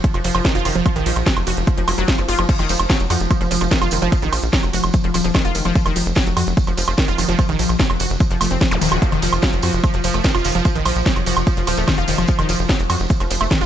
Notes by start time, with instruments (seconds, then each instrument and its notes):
Already playing: synth texture F3
0.04 kick, closed hi-hat
0.14 analog synth bass F1, synth arpeggio sound F3, closed hi-hat, high woodblock
0.24 analog synth bass F1, synth arpeggio sound F3, open hi-hat, ride
0.35 analog synth bass F1, synth arpeggio sound F3, closed hi-hat, high woodblock
0.45 synth arpeggio sound D#3, kick, snare, closed hi-hat
0.55 analog synth bass F1, synth arpeggio sound F4, closed hi-hat
0.65 analog synth bass F1, synth arpeggio sound D#3, open hi-hat, ride, high woodblock
0.75 analog synth bass F1, synth arpeggio sound F3
0.86 synth arpeggio sound F3, kick, closed hi-hat, high woodblock
0.96 analog synth bass A#1, synth arpeggio sound D#3, closed hi-hat
1.06 analog synth bass A#1, synth arpeggio sound F3, open hi-hat, ride
1.16 analog synth bass A#1, closed hi-hat, high woodblock
1.26 synth arpeggio sound F#3, kick, snare, closed hi-hat
1.37 analog synth bass F1, closed hi-hat, high woodblock
1.47 analog synth bass F1, synth arpeggio sound F#4, open hi-hat, ride
1.57 analog synth bass F1, closed hi-hat
1.67 kick, closed hi-hat, high woodblock
1.77 analog synth bass F1, synth arpeggio sound F3, closed hi-hat
1.88 analog synth bass F1, synth arpeggio sound F#3, open hi-hat, ride, high woodblock
1.98 analog synth bass F1, synth arpeggio sound F#3, closed hi-hat
2.08 synth arpeggio sound F3, kick, snare, closed hi-hat
2.18 analog synth bass F#1, synth arpeggio sound F3, closed hi-hat, high woodblock
2.29 analog synth bass F#1, synth arpeggio sound F4, open hi-hat, ride
2.39 analog synth bass F#1, synth arpeggio sound F3, closed hi-hat, high woodblock
2.49 synth texture F3, synth arpeggio sound F3, kick, closed hi-hat, crash, tambourine
2.59 analog synth bass F1, synth arpeggio sound D#3, closed hi-hat, tambourine, high woodblock
2.69 analog synth bass F1, synth arpeggio sound F3, open hi-hat, ride, tambourine
2.79 analog synth bass F1, closed hi-hat, tambourine, high woodblock
2.90 synth arpeggio sound F#3, kick, snare, closed hi-hat, tambourine
3.00 analog synth bass F1, closed hi-hat, tambourine
3.10 analog synth bass F2, synth arpeggio sound F#4, open hi-hat, ride, tambourine, high woodblock
3.20 analog synth bass F1, closed hi-hat, tambourine
3.31 kick, closed hi-hat, tambourine, high woodblock
3.41 analog synth bass F1, synth arpeggio sound F3, closed hi-hat, tambourine
3.51 analog synth bass F1, synth arpeggio sound F3, open hi-hat, ride, tambourine
3.61 analog synth bass F1, synth arpeggio sound F3, closed hi-hat, tambourine, high woodblock
3.71 synth arpeggio sound D#3, kick, snare, closed hi-hat, tambourine
3.82 analog synth bass F1, synth arpeggio sound F4, closed hi-hat, tambourine, high woodblock
3.91 analog synth bass F1, synth arpeggio sound D#3, open hi-hat, ride, tambourine
4.02 analog synth bass F1, synth arpeggio sound F3, closed hi-hat
4.12 synth arpeggio sound F3, kick, closed hi-hat, tambourine, high woodblock
4.22 analog synth bass A#1, synth arpeggio sound D#3, closed hi-hat, tambourine
4.33 analog synth bass A#1, synth arpeggio sound F3, open hi-hat, ride, tambourine, high woodblock
4.43 analog synth bass A#1, closed hi-hat, tambourine
4.53 synth arpeggio sound F#3, kick, snare, closed hi-hat, tambourine
4.63 analog synth bass F1, closed hi-hat, tambourine, high woodblock
4.73 analog synth bass F1, synth arpeggio sound F#4, open hi-hat, ride, tambourine
4.83 analog synth bass F1, closed hi-hat, tambourine, high woodblock
4.93 kick, closed hi-hat, tambourine
5.04 analog synth bass F1, synth arpeggio sound F3, closed hi-hat, tambourine
5.14 analog synth bass D#1, synth arpeggio sound F3, open hi-hat, ride, tambourine, high woodblock
5.24 analog synth bass D#1, synth arpeggio sound F3, closed hi-hat, tambourine
5.34 synth arpeggio sound D#3, kick, snare, closed hi-hat, tambourine, high woodblock
5.45 analog synth bass F1, synth arpeggio sound F4, closed hi-hat, tambourine
5.55 analog synth bass F1, synth arpeggio sound D#3, open hi-hat, ride, tambourine
5.65 analog synth bass F1, synth arpeggio sound F3, closed hi-hat, tambourine, high woodblock
5.75 synth arpeggio sound F3, kick, closed hi-hat, tambourine
5.86 analog synth bass F1, synth arpeggio sound D#3, closed hi-hat, tambourine, high woodblock
5.96 analog synth bass F1, synth arpeggio sound F3, open hi-hat, ride, tambourine
6.06 analog synth bass F1, closed hi-hat, tambourine
6.15 synth arpeggio sound F#3, kick, snare, closed hi-hat, tambourine, high woodblock
6.26 analog synth bass F1, closed hi-hat, tambourine
6.37 analog synth bass F2, synth arpeggio sound F#4, open hi-hat, ride, tambourine, high woodblock
6.47 analog synth bass F1, closed hi-hat, tambourine
6.57 kick, closed hi-hat, tambourine
6.67 analog synth bass F1, synth arpeggio sound F3, closed hi-hat, tambourine, high woodblock
6.78 analog synth bass F1, synth arpeggio sound F3, open hi-hat, ride, tambourine
6.87 analog synth bass F1, synth arpeggio sound F3, tambourine, high woodblock
6.97 synth arpeggio sound D#3, kick, snare, closed hi-hat, tambourine
7.08 analog synth bass F1, synth arpeggio sound F4, closed hi-hat, tambourine
7.18 analog synth bass F1, synth arpeggio sound D#3, open hi-hat, ride, tambourine, high woodblock
7.29 analog synth bass F1, synth arpeggio sound F3, closed hi-hat, tambourine
7.39 synth arpeggio sound F3, kick, closed hi-hat, tambourine, high woodblock
7.49 analog synth bass A#1, synth arpeggio sound D#3, closed hi-hat, tambourine
7.59 analog synth bass A#1, synth arpeggio sound F3, open hi-hat, ride, tambourine
7.69 analog synth bass A#1, closed hi-hat, tambourine, high woodblock
7.80 synth arpeggio sound F#3, kick, snare, closed hi-hat, tambourine
7.90 analog synth bass F1, closed hi-hat, tambourine, high woodblock
8.00 analog synth bass F1, synth arpeggio sound F#4, open hi-hat, ride, tambourine
8.10 analog synth bass F1, closed hi-hat, tambourine
8.20 kick, closed hi-hat, tambourine, high woodblock
8.31 analog synth bass F1, synth arpeggio sound F3, closed hi-hat, tambourine
8.41 analog synth bass F1, synth arpeggio sound A3, open hi-hat, ride, tambourine, high woodblock
8.51 analog synth bass F1, synth arpeggio sound C4, closed hi-hat, tambourine
8.61 kick, snare, closed hi-hat, tambourine
8.71 analog synth bass D#1, synth arpeggio sound A3, closed hi-hat, tambourine, zap, high woodblock
8.81 analog synth bass D#1, synth arpeggio sound D#3, open hi-hat, ride, tambourine
8.92 analog synth bass D#1, synth arpeggio sound F#4, closed hi-hat, tambourine, high woodblock
9.02 synth arpeggio sound F3, kick, closed hi-hat, tambourine
9.11 analog synth bass F1, synth arpeggio sound D#3, closed hi-hat, tambourine, high woodblock
9.22 analog synth bass F1, synth arpeggio sound F3, open hi-hat, ride, tambourine
9.33 analog synth bass F1, closed hi-hat, tambourine, high woodblock
9.42 synth arpeggio sound F#3, kick, snare, closed hi-hat, tambourine
9.53 analog synth bass F1, closed hi-hat, tambourine
9.62 analog synth bass F2, synth arpeggio sound F#4, open hi-hat, ride, tambourine, high woodblock
9.73 analog synth bass F1, closed hi-hat, tambourine
9.84 kick, closed hi-hat, tambourine, high woodblock
9.94 analog synth bass F1, synth arpeggio sound F3, closed hi-hat, tambourine
10.04 analog synth bass F1, synth arpeggio sound F3, open hi-hat, ride, tambourine
10.14 analog synth bass F1, synth arpeggio sound A3, closed hi-hat, tambourine, high woodblock
10.24 synth arpeggio sound D#3, kick, snare, closed hi-hat, tambourine
10.35 analog synth bass F1, synth arpeggio sound F4, closed hi-hat, tambourine, high woodblock
10.44 analog synth bass F1, synth arpeggio sound D#3, open hi-hat, ride, tambourine
10.55 analog synth bass F1, synth arpeggio sound F3, closed hi-hat, tambourine
10.65 synth arpeggio sound F3, kick, closed hi-hat, tambourine, high woodblock
10.75 analog synth bass A#1, synth arpeggio sound D#3, closed hi-hat, tambourine
10.85 analog synth bass A#1, synth arpeggio sound F3, open hi-hat, ride, tambourine, high woodblock
10.96 analog synth bass A#1, closed hi-hat, tambourine
11.06 synth arpeggio sound F#3, kick, snare, closed hi-hat, tambourine
11.16 analog synth bass F1, closed hi-hat, tambourine, high woodblock
11.26 analog synth bass F1, synth arpeggio sound F#4, open hi-hat, ride, tambourine
11.37 analog synth bass F1, closed hi-hat, tambourine, high woodblock
11.47 kick, closed hi-hat, tambourine
11.57 analog synth bass F1, synth arpeggio sound F3, closed hi-hat, tambourine
11.67 analog synth bass D#1, synth arpeggio sound F3, open hi-hat, ride, tambourine, high woodblock
11.77 analog synth bass D#1, synth arpeggio sound A3, closed hi-hat, tambourine
11.88 synth arpeggio sound D#3, kick, snare, closed hi-hat, tambourine, high woodblock
11.98 analog synth bass F1, synth arpeggio sound F4, closed hi-hat, tambourine
12.08 analog synth bass F1, synth arpeggio sound D#3, open hi-hat, ride, tambourine
12.18 analog synth bass F1, synth arpeggio sound F3, closed hi-hat, tambourine, high woodblock
12.28 synth arpeggio sound F3, kick, closed hi-hat, tambourine
12.39 analog synth bass F1, synth arpeggio sound D#3, closed hi-hat, tambourine, high woodblock
12.49 analog synth bass F1, synth arpeggio sound F3, open hi-hat, ride, tambourine
12.59 analog synth bass F1, closed hi-hat, tambourine
12.69 synth arpeggio sound F#3, kick, snare, closed hi-hat, tambourine, high woodblock
12.80 analog synth bass F1, closed hi-hat, tambourine
12.90 analog synth bass F2, synth arpeggio sound F#4, open hi-hat, ride, tambourine, high woodblock
13.00 analog synth bass F1, closed hi-hat, tambourine
13.10 kick, closed hi-hat, tambourine
13.20 analog synth bass F1, synth arpeggio sound F3, closed hi-hat, tambourine, high woodblock
13.31 analog synth bass F1, synth arpeggio sound F3, open hi-hat, ride, tambourine
13.40 analog synth bass F1, synth arpeggio sound A3, closed hi-hat, tambourine, high woodblock
13.51 synth arpeggio sound D#3, kick, snare, closed hi-hat, tambourine
13.61 analog synth bass F1, synth arpeggio sound F4, closed hi-hat, tambourine